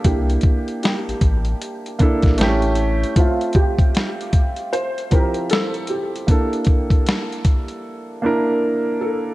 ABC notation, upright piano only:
X:1
M:4/4
L:1/8
Q:"Swing 16ths" 1/4=77
K:Gdor
V:1 name="Upright piano"
[B,DEG]3 z2 [B,DEA] [A,C^CEG]2 | [A,CFe]3 z2 [F,CEG]2 z | [B,DEA]3 z2 [B,DEB]2 z |]